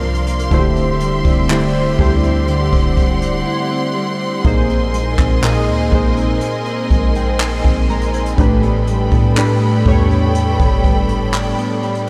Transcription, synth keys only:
0, 0, Header, 1, 2, 480
1, 0, Start_track
1, 0, Tempo, 983607
1, 251, Time_signature, 4, 2, 24, 8
1, 5902, End_track
2, 0, Start_track
2, 0, Title_t, "Synth keys"
2, 0, Program_c, 0, 88
2, 0, Control_c, 0, 64, 127
2, 0, Note_on_c, 0, 48, 84
2, 0, Note_on_c, 0, 58, 80
2, 0, Note_on_c, 0, 62, 79
2, 0, Note_on_c, 0, 65, 77
2, 0, Note_on_c, 0, 72, 101
2, 248, Note_on_c, 0, 50, 89
2, 252, Note_on_c, 0, 57, 80
2, 256, Note_on_c, 0, 64, 81
2, 258, Note_off_c, 0, 58, 0
2, 258, Control_c, 0, 64, 0
2, 259, Note_off_c, 0, 72, 0
2, 260, Note_off_c, 0, 62, 0
2, 260, Note_on_c, 0, 66, 65
2, 261, Note_off_c, 0, 48, 0
2, 262, Note_off_c, 0, 65, 0
2, 263, Note_on_c, 0, 72, 96
2, 287, Note_off_c, 0, 66, 0
2, 291, Note_on_c, 0, 67, 82
2, 346, Control_c, 0, 64, 127
2, 677, Note_off_c, 0, 50, 0
2, 679, Note_off_c, 0, 57, 0
2, 681, Note_off_c, 0, 64, 0
2, 685, Note_off_c, 0, 72, 0
2, 699, Note_off_c, 0, 67, 0
2, 728, Note_on_c, 0, 50, 93
2, 732, Note_on_c, 0, 57, 82
2, 736, Note_on_c, 0, 64, 85
2, 740, Note_on_c, 0, 67, 80
2, 744, Note_on_c, 0, 72, 97
2, 943, Note_off_c, 0, 50, 0
2, 945, Note_off_c, 0, 57, 0
2, 947, Note_off_c, 0, 64, 0
2, 949, Note_off_c, 0, 67, 0
2, 951, Note_off_c, 0, 72, 0
2, 967, Note_on_c, 0, 50, 86
2, 972, Note_on_c, 0, 57, 73
2, 975, Note_on_c, 0, 64, 78
2, 979, Note_on_c, 0, 67, 82
2, 983, Note_on_c, 0, 72, 97
2, 1824, Note_off_c, 0, 50, 0
2, 1826, Note_off_c, 0, 57, 0
2, 1828, Note_off_c, 0, 64, 0
2, 1830, Note_off_c, 0, 67, 0
2, 1832, Note_off_c, 0, 72, 0
2, 2167, Note_on_c, 0, 46, 88
2, 2171, Note_on_c, 0, 58, 79
2, 2175, Note_on_c, 0, 63, 80
2, 2177, Control_c, 0, 64, 0
2, 2179, Note_on_c, 0, 68, 79
2, 2183, Note_on_c, 0, 72, 94
2, 2273, Control_c, 0, 64, 127
2, 2597, Note_off_c, 0, 46, 0
2, 2599, Note_off_c, 0, 58, 0
2, 2600, Note_off_c, 0, 63, 0
2, 2602, Note_off_c, 0, 68, 0
2, 2604, Note_off_c, 0, 72, 0
2, 2648, Note_on_c, 0, 46, 91
2, 2652, Note_on_c, 0, 58, 84
2, 2656, Note_on_c, 0, 63, 77
2, 2660, Note_on_c, 0, 68, 78
2, 2664, Note_on_c, 0, 75, 95
2, 2863, Note_off_c, 0, 46, 0
2, 2865, Note_off_c, 0, 58, 0
2, 2867, Note_off_c, 0, 63, 0
2, 2869, Note_off_c, 0, 68, 0
2, 2871, Note_off_c, 0, 75, 0
2, 2887, Note_on_c, 0, 46, 82
2, 2891, Note_on_c, 0, 58, 79
2, 2895, Note_on_c, 0, 63, 78
2, 2899, Note_on_c, 0, 68, 77
2, 2903, Note_on_c, 0, 72, 96
2, 3495, Note_on_c, 0, 79, 68
2, 3607, Note_off_c, 0, 79, 0
2, 3615, Note_on_c, 0, 80, 74
2, 3744, Note_off_c, 0, 46, 0
2, 3746, Note_off_c, 0, 58, 0
2, 3748, Note_off_c, 0, 63, 0
2, 3750, Note_off_c, 0, 68, 0
2, 3752, Note_off_c, 0, 72, 0
2, 3841, Note_off_c, 0, 80, 0
2, 3855, Note_on_c, 0, 82, 71
2, 3967, Note_off_c, 0, 82, 0
2, 3975, Note_on_c, 0, 80, 66
2, 4088, Note_on_c, 0, 45, 83
2, 4091, Note_on_c, 0, 57, 81
2, 4095, Note_on_c, 0, 62, 82
2, 4096, Control_c, 0, 64, 0
2, 4099, Note_on_c, 0, 67, 77
2, 4103, Note_on_c, 0, 71, 92
2, 4190, Control_c, 0, 64, 127
2, 4201, Note_off_c, 0, 80, 0
2, 4517, Note_off_c, 0, 45, 0
2, 4519, Note_off_c, 0, 57, 0
2, 4521, Note_off_c, 0, 62, 0
2, 4523, Note_off_c, 0, 67, 0
2, 4524, Note_off_c, 0, 71, 0
2, 4566, Note_on_c, 0, 45, 91
2, 4570, Note_on_c, 0, 57, 81
2, 4574, Note_on_c, 0, 62, 83
2, 4578, Note_on_c, 0, 67, 80
2, 4582, Note_on_c, 0, 71, 97
2, 4782, Note_off_c, 0, 45, 0
2, 4784, Note_off_c, 0, 57, 0
2, 4786, Note_off_c, 0, 62, 0
2, 4788, Note_off_c, 0, 67, 0
2, 4790, Note_off_c, 0, 71, 0
2, 4807, Note_on_c, 0, 45, 89
2, 4812, Note_on_c, 0, 57, 82
2, 4815, Note_on_c, 0, 62, 82
2, 4819, Note_on_c, 0, 67, 80
2, 4823, Note_on_c, 0, 73, 100
2, 5664, Note_off_c, 0, 45, 0
2, 5666, Note_off_c, 0, 57, 0
2, 5668, Note_off_c, 0, 62, 0
2, 5670, Note_off_c, 0, 67, 0
2, 5672, Note_off_c, 0, 73, 0
2, 5902, End_track
0, 0, End_of_file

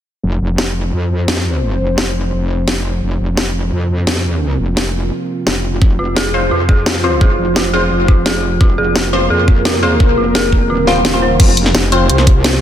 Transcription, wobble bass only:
0, 0, Header, 1, 2, 480
1, 0, Start_track
1, 0, Tempo, 348837
1, 323, Time_signature, 4, 2, 24, 8
1, 17354, End_track
2, 0, Start_track
2, 0, Title_t, "Wobble bass"
2, 0, Program_c, 0, 39
2, 322, Note_on_c, 0, 29, 94
2, 543, Note_off_c, 0, 29, 0
2, 562, Note_on_c, 0, 29, 95
2, 1263, Note_off_c, 0, 29, 0
2, 1283, Note_on_c, 0, 41, 95
2, 2464, Note_off_c, 0, 41, 0
2, 2482, Note_on_c, 0, 29, 98
2, 3183, Note_off_c, 0, 29, 0
2, 3203, Note_on_c, 0, 29, 94
2, 4144, Note_off_c, 0, 29, 0
2, 4163, Note_on_c, 0, 29, 92
2, 4384, Note_off_c, 0, 29, 0
2, 4404, Note_on_c, 0, 29, 98
2, 5104, Note_off_c, 0, 29, 0
2, 5124, Note_on_c, 0, 41, 95
2, 6304, Note_off_c, 0, 41, 0
2, 6323, Note_on_c, 0, 29, 98
2, 7024, Note_off_c, 0, 29, 0
2, 7522, Note_on_c, 0, 29, 91
2, 7983, Note_off_c, 0, 29, 0
2, 8002, Note_on_c, 0, 29, 95
2, 8223, Note_off_c, 0, 29, 0
2, 8242, Note_on_c, 0, 29, 94
2, 8943, Note_off_c, 0, 29, 0
2, 8963, Note_on_c, 0, 41, 97
2, 10143, Note_off_c, 0, 41, 0
2, 10163, Note_on_c, 0, 29, 97
2, 10864, Note_off_c, 0, 29, 0
2, 10883, Note_on_c, 0, 29, 93
2, 11824, Note_off_c, 0, 29, 0
2, 11843, Note_on_c, 0, 29, 93
2, 12064, Note_off_c, 0, 29, 0
2, 12083, Note_on_c, 0, 29, 93
2, 12784, Note_off_c, 0, 29, 0
2, 12803, Note_on_c, 0, 41, 92
2, 13983, Note_off_c, 0, 41, 0
2, 14002, Note_on_c, 0, 29, 99
2, 14703, Note_off_c, 0, 29, 0
2, 14722, Note_on_c, 0, 27, 97
2, 15183, Note_off_c, 0, 27, 0
2, 15202, Note_on_c, 0, 27, 97
2, 15663, Note_off_c, 0, 27, 0
2, 15683, Note_on_c, 0, 29, 96
2, 16144, Note_off_c, 0, 29, 0
2, 16163, Note_on_c, 0, 29, 95
2, 16624, Note_off_c, 0, 29, 0
2, 16644, Note_on_c, 0, 36, 94
2, 17344, Note_off_c, 0, 36, 0
2, 17354, End_track
0, 0, End_of_file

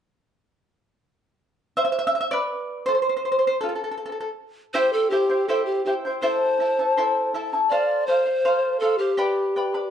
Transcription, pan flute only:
0, 0, Header, 1, 2, 480
1, 0, Start_track
1, 0, Key_signature, 0, "minor"
1, 0, Tempo, 742574
1, 1146, Time_signature, 2, 2, 24, 8
1, 6402, End_track
2, 0, Start_track
2, 0, Title_t, "Pan flute"
2, 0, Program_c, 0, 75
2, 3062, Note_on_c, 0, 72, 92
2, 3187, Note_on_c, 0, 69, 88
2, 3197, Note_off_c, 0, 72, 0
2, 3299, Note_on_c, 0, 67, 79
2, 3308, Note_off_c, 0, 69, 0
2, 3544, Note_on_c, 0, 69, 69
2, 3554, Note_off_c, 0, 67, 0
2, 3652, Note_off_c, 0, 69, 0
2, 3656, Note_on_c, 0, 67, 69
2, 3772, Note_off_c, 0, 67, 0
2, 3784, Note_on_c, 0, 67, 69
2, 3838, Note_off_c, 0, 67, 0
2, 4021, Note_on_c, 0, 72, 84
2, 4716, Note_off_c, 0, 72, 0
2, 4976, Note_on_c, 0, 74, 89
2, 5214, Note_on_c, 0, 72, 95
2, 5224, Note_off_c, 0, 74, 0
2, 5683, Note_off_c, 0, 72, 0
2, 5687, Note_on_c, 0, 69, 82
2, 5807, Note_on_c, 0, 67, 80
2, 5817, Note_off_c, 0, 69, 0
2, 6402, Note_off_c, 0, 67, 0
2, 6402, End_track
0, 0, End_of_file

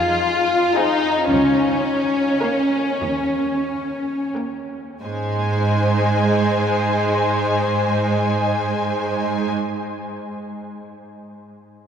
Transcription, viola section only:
0, 0, Header, 1, 2, 480
1, 0, Start_track
1, 0, Key_signature, -4, "major"
1, 0, Tempo, 1081081
1, 580, Time_signature, 6, 3, 24, 8
1, 1070, Tempo, 1239669
1, 1550, Tempo, 1369863
1, 2030, Tempo, 1265823
1, 2990, Tempo, 1242236
1, 4659, End_track
2, 0, Start_track
2, 0, Title_t, "Viola section"
2, 0, Program_c, 0, 48
2, 343, Note_on_c, 0, 60, 44
2, 343, Note_on_c, 0, 68, 42
2, 520, Note_off_c, 0, 60, 0
2, 520, Note_off_c, 0, 68, 0
2, 1074, Note_on_c, 0, 70, 45
2, 1075, Note_on_c, 0, 58, 41
2, 1244, Note_off_c, 0, 58, 0
2, 1244, Note_off_c, 0, 70, 0
2, 1795, Note_on_c, 0, 70, 26
2, 1796, Note_on_c, 0, 58, 25
2, 1974, Note_off_c, 0, 58, 0
2, 1974, Note_off_c, 0, 70, 0
2, 2032, Note_on_c, 0, 56, 30
2, 2032, Note_on_c, 0, 72, 31
2, 3741, Note_off_c, 0, 56, 0
2, 3742, Note_off_c, 0, 72, 0
2, 4659, End_track
0, 0, End_of_file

